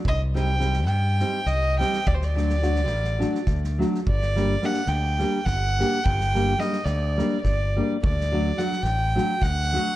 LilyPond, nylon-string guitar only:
\new Staff \with { instrumentName = "Nylon-string guitar" } { \time 7/8 \tempo 4 = 106 r8 <g c' ees' g'>8 <g c' ees' g'>8 r8 <g c' ees' g'>8 r8 <g c' ees' g'>8 | r8 <fis a d' fis'>8 <fis a d' fis'>8 r8 <fis a d' fis'>8 r8 <fis a d' fis'>8 | r8 <g bes d' g'>8 <g bes d' g'>8 r8 <g bes d' g'>8 r8 <g bes d' g'>8 | r8 <g bes d' g'>8 <g bes d' g'>8 r8 <g bes d' g'>8 r8 <g bes d' g'>8 |
r8 <fis a d' fis'>8 <fis a d' fis'>8 r8 <fis a d' fis'>8 r8 <fis a d' fis'>8 | }